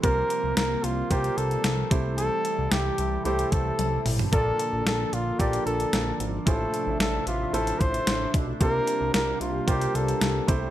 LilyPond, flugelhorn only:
\new Staff \with { instrumentName = "Flugelhorn" } { \time 4/4 \key c \mixolydian \tempo 4 = 112 bes'4 bes'8 f'8 g'8 a'4 r8 | a'4 g'4 g'8 a'4 r8 | a'4 a'8 f'8 g'8 a'4 r8 | a'4 a'8 f'8 a'8 c''4 r8 |
bes'4 bes'8 f'8 g'8 a'4 r8 | }